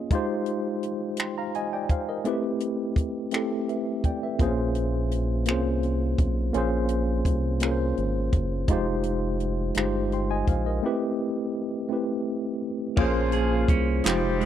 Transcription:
Already playing: tine electric piano A#3 C#4 F4 G#4 D#5
0.11 tine electric piano G#3 D#4 F4 G4, kick, closed hi-hat
0.15 tine electric piano C5
0.46 closed hi-hat
0.83 closed hi-hat
1.17 tine electric piano G5 C6, finger snap, closed hi-hat
1.38 tine electric piano F5 A#5
1.55 tine electric piano D#5 G#5, closed hi-hat
1.73 tine electric piano D5 G5
1.89 tine electric piano C5 F5, kick, closed hi-hat
2.09 tine electric piano A#4 D#5
2.24 tine electric piano A3 C4 E4 G4 B4, closed hi-hat
2.60 closed hi-hat
2.96 kick, closed hi-hat
3.31 tine electric piano A3 C4 E4 G4, finger snap, closed hi-hat
3.36 tine electric piano A4
3.69 tine electric piano B4 E5, closed hi-hat
4.04 tine electric piano D5 G5, kick, closed hi-hat
4.23 tine electric piano B4 E5
4.39 analog synth bass A#1, tine electric piano A#3 C4 F4 G#4 C5, kick, closed hi-hat
4.46 tine electric piano C#4
4.75 closed hi-hat
5.11 closed hi-hat
5.46 analog synth bass C2, tine electric piano A#3 C4 F4, finger snap, closed hi-hat
5.50 tine electric piano G#4 C5
5.54 tine electric piano C#4
5.83 closed hi-hat
6.18 analog synth bass B1, kick, closed hi-hat
6.53 analog synth bass A#1, tine electric piano A#3 C#4 F4 G#4, closed hi-hat
6.58 tine electric piano C5
6.88 closed hi-hat
7.25 analog synth bass C2, kick, closed hi-hat
7.60 tine electric piano A#3 C#4 F4 G#4, finger snap, closed hi-hat
7.65 tine electric piano A#4
7.71 tine electric piano C5
7.97 analog synth bass G#1, closed hi-hat
8.33 analog synth bass F#1, kick, closed hi-hat
8.68 analog synth bass F1, tine electric piano G#3 D#4 F4 G4, kick, closed hi-hat
8.73 tine electric piano C5
9.03 closed hi-hat
9.40 closed hi-hat
9.75 analog synth bass G1, tine electric piano G#3 D#4 F4 G4, finger snap, closed hi-hat
9.79 tine electric piano C5
10.12 tine electric piano G5 C6, closed hi-hat
10.31 tine electric piano D#5 G#5
10.47 analog synth bass A#1, tine electric piano C5 F5, kick, closed hi-hat
10.66 tine electric piano A#4 D#5
10.83 tine electric piano A3 C4 E4 G4 B4
11.89 tine electric piano A3 C4 E4 G4
11.93 tine electric piano B4
12.97 analog synth bass A#1, horn section F3 C#4 F4, tine electric piano A#3 C#4 F4 G#4 C5, clean electric guitar A#3, kick, crash
13.32 clean electric guitar G#4, closed hi-hat
13.68 analog synth bass C2, clean electric guitar C#4, kick, closed hi-hat
14.03 analog synth bass F1, clean electric guitar F3, horn section G3 C4 D#4 G4, tine electric piano G#3 D#4 F4 G4 C5, clap, closed hi-hat
14.41 clean electric guitar G#3, closed hi-hat

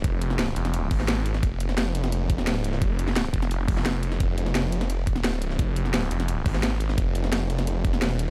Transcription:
0.04 detuned saw bass F1, kick, closed hi-hat
0.22 closed hi-hat
0.30 snare
0.39 snare, closed hi-hat
0.48 closed hi-hat
0.56 detuned saw bass F1, closed hi-hat
0.65 snare, closed hi-hat
0.74 closed hi-hat
0.91 detuned saw bass G#1, kick, closed hi-hat, open hi-hat
1.00 snare
1.08 snare, closed hi-hat
1.26 closed hi-hat
1.34 snare
1.43 detuned saw bass F1, kick, closed hi-hat
1.60 closed hi-hat
1.69 snare
1.78 snare, closed hi-hat
1.95 closed hi-hat
2.04 snare, closed hi-hat
2.12 closed hi-hat
2.30 kick, closed hi-hat
2.38 detuned saw bass D#1, snare
2.47 snare, closed hi-hat
2.56 closed hi-hat
2.64 detuned saw bass C#1, closed hi-hat
2.73 snare
2.82 detuned saw bass F1, kick, closed hi-hat
2.99 closed hi-hat
3.08 snare
3.16 snare, closed hi-hat
3.25 closed hi-hat
3.34 detuned saw bass F1, kick, closed hi-hat
3.42 snare, closed hi-hat
3.51 closed hi-hat
3.68 kick, closed hi-hat, open hi-hat
3.77 snare
3.86 snare, closed hi-hat
4.03 closed hi-hat
4.12 snare
4.20 detuned saw bass F1, kick, closed hi-hat
4.38 closed hi-hat
4.46 snare
4.55 snare, closed hi-hat
4.72 closed hi-hat
4.81 snare, closed hi-hat
4.90 closed hi-hat
5.07 kick, closed hi-hat
5.16 detuned saw bass D#1, snare
5.24 snare, closed hi-hat
5.33 closed hi-hat
5.41 detuned saw bass C#1, closed hi-hat
5.51 snare
5.59 detuned saw bass F1, kick, closed hi-hat
5.76 closed hi-hat
5.85 snare
5.94 snare, closed hi-hat
6.02 closed hi-hat
6.11 detuned saw bass F1, closed hi-hat
6.20 snare, closed hi-hat
6.28 closed hi-hat
6.46 detuned saw bass G#1, kick, closed hi-hat, open hi-hat
6.54 snare
6.63 snare, closed hi-hat
6.80 closed hi-hat
6.89 snare
6.98 detuned saw bass F1, kick, closed hi-hat
7.15 closed hi-hat
7.24 snare
7.33 snare, closed hi-hat
7.50 closed hi-hat
7.59 snare, closed hi-hat
7.67 closed hi-hat
7.85 kick, closed hi-hat
7.93 detuned saw bass E1, snare
8.02 snare, closed hi-hat
8.11 closed hi-hat
8.19 detuned saw bass D#1, closed hi-hat

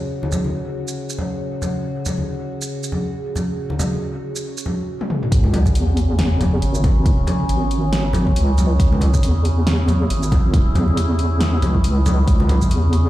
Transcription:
Already playing: synth drone C#3 F#4
0.23 high conga
0.32 low conga, shaker
0.45 high conga
0.88 shaker
1.10 shaker
1.18 low conga
1.62 low conga, shaker
2.06 low conga, shaker
2.18 high conga
2.62 shaker
2.83 shaker
2.92 low conga
3.36 low conga, shaker
3.70 high conga
3.79 low conga, shaker
3.92 high conga
4.36 shaker
4.57 shaker
4.66 low conga
5.01 high tom
5.10 mid tom
5.23 mid tom
5.32 wobble bass C#2, synth drone C#3 C#4, kick, closed hi-hat, sub drop
5.44 high conga
5.54 closed hi-hat, low conga
5.66 kick, high conga, shaker
5.75 wobble bass E2, closed hi-hat
5.97 closed hi-hat
6.19 snare, closed hi-hat
6.41 closed hi-hat, low conga
6.62 wobble bass G#1, closed hi-hat
6.75 shaker
6.84 kick, closed hi-hat, high conga, low conga
7.06 kick, closed hi-hat
7.27 closed hi-hat, low conga
7.40 high conga
7.49 wobble bass G#1, closed hi-hat
7.71 closed hi-hat
7.93 snare, closed hi-hat
8.13 closed hi-hat, low conga
8.27 kick
8.36 wobble bass C#2, closed hi-hat
8.58 closed hi-hat, low conga, shaker
8.80 wobble bass C#2, synth drone E4, kick, closed hi-hat
8.92 high conga
9.01 closed hi-hat, low conga
9.14 kick, high conga, shaker
9.23 wobble bass E2, closed hi-hat
9.45 closed hi-hat
9.67 snare, closed hi-hat
9.88 closed hi-hat, low conga
10.10 wobble bass G#1, closed hi-hat
10.23 shaker
10.31 kick, closed hi-hat, high conga, low conga
10.54 kick, closed hi-hat
10.75 wobble bass E2, closed hi-hat, low conga
10.88 high conga
10.97 closed hi-hat
11.19 closed hi-hat
11.41 snare, closed hi-hat
11.62 wobble bass C#2, closed hi-hat, low conga
11.75 kick
11.84 closed hi-hat
12.06 closed hi-hat, low conga, shaker
12.27 wobble bass C#2, synth drone C#4, kick, closed hi-hat
12.40 high conga
12.49 closed hi-hat, low conga
12.62 kick, high conga, shaker
12.71 wobble bass E2, closed hi-hat
12.93 closed hi-hat

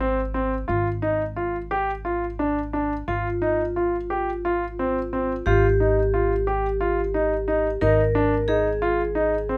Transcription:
Already playing: upright bass G#1
0.00 grand piano C4
0.34 grand piano C4
0.68 upright bass G#1, grand piano F4
1.02 grand piano D#4
1.36 grand piano F4
1.71 grand piano G4
2.05 grand piano F4
2.39 grand piano D4
2.73 grand piano D4
3.08 upright bass G#1, grand piano F4, vibraphone F4
3.42 grand piano D#4
3.76 grand piano F4
4.10 grand piano G4
4.45 grand piano F4
4.79 grand piano C4
5.13 grand piano C4
5.46 upright bass G#1, grand piano F4, vibraphone G4
5.80 grand piano D#4
6.14 grand piano F4
6.47 grand piano G4
6.81 grand piano F4
7.14 grand piano D#4
7.48 grand piano D#4
7.81 upright bass G#1, grand piano D#4, vibraphone A#4
8.15 grand piano D4
8.48 grand piano D#4, vibraphone G#4
8.82 grand piano F4
9.15 grand piano D#4
9.49 grand piano C4

